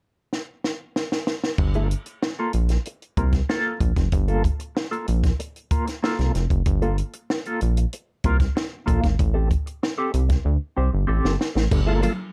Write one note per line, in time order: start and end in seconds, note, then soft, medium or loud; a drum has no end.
0.33 snare soft
0.64 snare medium
0.96 snare medium
1.12 snare medium
1.27 snare medium
1.44 snare medium
1.58 1.94 G1 loud
1.58 muted clean electric guitar stroke soft
1.58 kick loud
1.58 crash medium
1.74 1.89 A#3 medium
1.74 1.89 F4 medium
1.74 1.89 A4 medium
1.74 closed hi-hat soft
1.91 closed hi-hat medium
2.06 muted clean electric guitar stroke soft
2.06 closed hi-hat medium
2.22 muted clean electric guitar stroke soft
2.22 snare loud
2.39 2.53 A#3 medium
2.39 2.53 F4 medium
2.39 2.54 A4 medium
2.53 2.77 A#1 medium
2.53 closed hi-hat medium
2.69 muted clean electric guitar stroke soft
2.69 snare soft
2.69 closed hi-hat soft
2.85 muted clean electric guitar stroke soft
2.85 closed hi-hat medium
3.02 closed hi-hat soft
3.17 3.41 C2 medium
3.17 3.33 A#3 medium
3.17 3.33 F4 soft
3.17 3.33 A#4 medium
3.17 kick medium
3.17 closed hi-hat medium
3.32 muted clean electric guitar stroke soft
3.32 kick medium
3.32 snare soft
3.32 closed hi-hat soft
3.49 3.78 A#3 medium
3.49 3.79 F4 medium
3.49 3.79 A4 medium
3.49 snare loud
3.80 3.92 A#1 medium
3.80 muted clean electric guitar stroke soft
3.80 kick medium
3.80 closed hi-hat medium
3.96 4.08 F#1 medium
3.96 muted clean electric guitar stroke soft
3.96 kick medium
3.96 snare soft
3.96 closed hi-hat soft
4.12 4.48 G1 loud
4.12 muted clean electric guitar stroke soft
4.12 kick loud
4.12 closed hi-hat medium
4.28 4.44 A#3 medium
4.28 4.44 F4 medium
4.28 4.44 A4 medium
4.28 closed hi-hat soft
4.44 muted clean electric guitar stroke soft
4.44 kick medium
4.44 closed hi-hat medium
4.60 muted clean electric guitar stroke soft
4.60 closed hi-hat medium
4.75 muted clean electric guitar stroke soft
4.75 snare loud
4.91 5.07 A#3 medium
4.91 5.08 F4 medium
4.91 5.08 A4 medium
4.91 closed hi-hat soft
5.08 5.32 A#1 medium
5.08 muted clean electric guitar stroke soft
5.08 closed hi-hat medium
5.24 muted clean electric guitar stroke soft
5.24 kick medium
5.24 snare soft
5.24 closed hi-hat medium
5.40 muted clean electric guitar stroke soft
5.40 closed hi-hat medium
5.56 closed hi-hat soft
5.71 5.86 A#3 medium
5.71 5.86 F4 medium
5.71 5.87 A#4 medium
5.71 kick medium
5.71 closed hi-hat medium
5.87 muted clean electric guitar stroke soft
5.87 snare soft
5.87 closed hi-hat soft
6.03 6.32 A#3 medium
6.03 6.32 F4 medium
6.03 6.32 A4 medium
6.03 snare loud
6.19 6.31 C2 medium
6.19 snare soft
6.19 closed hi-hat soft
6.34 6.46 F1 medium
6.34 muted clean electric guitar stroke soft
6.34 snare soft
6.34 closed hi-hat medium
6.50 6.62 F#1 medium
6.50 muted clean electric guitar stroke soft
6.50 kick medium
6.50 closed hi-hat soft
6.66 7.01 G1 loud
6.66 muted clean electric guitar stroke soft
6.66 kick loud
6.66 closed hi-hat medium
6.82 6.98 A#3 medium
6.82 6.98 F4 medium
6.82 6.99 A4 medium
6.82 closed hi-hat soft
6.98 closed hi-hat medium
7.13 muted clean electric guitar stroke soft
7.13 closed hi-hat medium
7.30 muted clean electric guitar stroke soft
7.30 snare medium
7.45 7.61 A#3 medium
7.45 7.61 F4 medium
7.45 7.62 A4 medium
7.45 closed hi-hat soft
7.61 7.85 A#1 medium
7.61 muted clean electric guitar stroke soft
7.61 closed hi-hat medium
7.77 muted clean electric guitar stroke soft
7.77 closed hi-hat medium
7.93 muted clean electric guitar stroke soft
7.93 closed hi-hat medium
8.24 8.48 C2 medium
8.24 8.40 A#3 medium
8.24 8.39 F4 medium
8.24 8.39 A#4 medium
8.24 kick medium
8.24 closed hi-hat medium
8.40 kick medium
8.40 snare soft
8.40 closed hi-hat soft
8.55 muted clean electric guitar stroke soft
8.55 snare loud
8.71 muted clean electric guitar stroke soft
8.86 9.00 A#1 medium
8.86 9.06 A#3 medium
8.86 9.02 F4 medium
8.86 9.01 A4 medium
8.86 kick medium
8.86 closed hi-hat medium
9.02 9.15 G#1 medium
9.02 muted clean electric guitar stroke soft
9.02 kick medium
9.02 snare soft
9.02 closed hi-hat soft
9.19 9.54 A1 loud
9.19 muted clean electric guitar stroke soft
9.19 kick loud
9.19 closed hi-hat medium
9.34 9.49 C4 medium
9.34 9.50 G4 medium
9.34 9.50 A4 medium
9.50 muted clean electric guitar stroke soft
9.50 kick medium
9.50 closed hi-hat medium
9.66 muted clean electric guitar stroke soft
9.66 closed hi-hat medium
9.83 muted clean electric guitar stroke soft
9.83 snare medium
9.98 10.12 C4 medium
9.98 10.13 G4 medium
9.98 10.13 A4 medium
10.13 10.37 C2 medium
10.13 muted clean electric guitar stroke soft
10.13 closed hi-hat medium
10.29 muted clean electric guitar stroke medium
10.29 kick medium
10.29 snare soft
10.29 closed hi-hat medium
10.44 10.57 D2 medium
10.44 muted clean electric guitar stroke soft
10.77 10.89 C2 medium
10.77 10.92 C4 medium
10.77 10.92 G4 medium
10.77 10.92 C5 medium
10.93 11.05 G1 medium
10.93 muted clean electric guitar stroke soft
11.07 11.20 A1 medium
11.07 11.37 C4 medium
11.07 11.37 G4 medium
11.07 11.38 A4 medium
11.25 11.36 G1 medium
11.25 snare medium
11.39 muted clean electric guitar stroke soft
11.39 snare medium
11.55 11.67 A1 medium
11.55 muted clean electric guitar stroke soft
11.55 snare medium
11.71 12.07 G1 loud
11.71 11.81 G2 medium
11.71 11.81 D3 medium
11.71 muted clean electric guitar stroke soft
11.71 kick loud
11.71 crash loud
11.71 tambourine medium
11.86 12.01 A#3 medium
11.86 12.02 F4 medium
11.86 11.94 F4 soft
11.86 12.02 A4 medium
11.86 11.93 A4 medium
12.02 12.13 A#3 medium
12.02 12.13 F4 medium
12.02 12.13 A4 medium
12.02 closed hi-hat medium
12.02 tambourine soft
12.02 muted conga soft
12.02 high conga medium
12.19 muted clean electric guitar stroke soft